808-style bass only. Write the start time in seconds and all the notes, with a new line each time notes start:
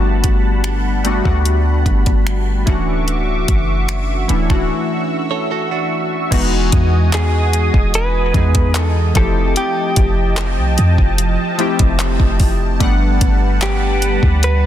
Already playing: G1
0.24 G1
1.26 D2
1.86 G1
2.07 G1
2.68 D1
3.49 F#1
4.30 D1
4.50 D1
6.32 E1
6.73 E2
7.74 E1
8.35 E2
9.16 F1
9.97 F1
10.58 C2
10.79 F2
10.99 F1
11.80 F1
12.20 F1
12.81 G1
13.22 G1
14.23 D2